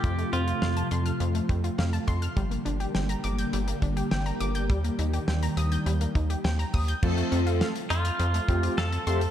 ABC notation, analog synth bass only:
X:1
M:4/4
L:1/16
Q:1/4=103
K:Fmix
V:1 name="Analog synth bass" clef=bass
F,,2 F,,2 F,,2 F,,2 F,,2 F,,2 F,,2 F,,2 | G,,,2 G,,,2 G,,,2 G,,,2 G,,,2 G,,,2 G,,,2 G,,,2 | E,,2 E,,2 E,,2 E,,2 E,,2 E,,2 E,,2 E,,2 | F,,2 F,,3 z F,,2 F,,2 F,,2 F,,2 F,,2 |]